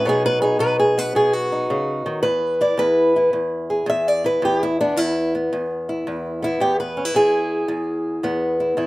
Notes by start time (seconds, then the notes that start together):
0.05 B2 F#3 B3 D#4 G#4
0.26 B4
0.42 D#4 G#4
0.59 B2 B4
0.80 G#4
0.98 B3 B4
1.15 B2 G#4
1.33 F#4
1.52 D#4
1.70 C#3
2.06 D#3
2.23 E2 B4
2.61 E4 D5
2.78 E2 B4
3.16 E4
3.33 E2
3.70 G#4
3.86 E2 E5
4.08 D5
4.24 E4 B4
4.42 E2 G4
4.63 E4
4.81 B3 D4
4.96 E2 E4
5.35 B3
5.53 E2
5.89 E4
6.07 E2
6.42 B3 E4
6.60 E2 G4
6.80 B4
6.97 C#4
7.05 E4
7.14 E2 G#4
7.68 E2
8.23 E2 B3
8.60 E4
8.77 E2 E4